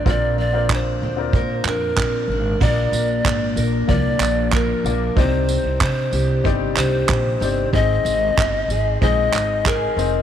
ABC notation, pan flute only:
X:1
M:4/4
L:1/8
Q:1/4=94
K:Bbmix
V:1 name="Pan flute"
d d c3 B3 | d4 d2 B2 | c2 c2 z c3 | e4 e2 B2 |]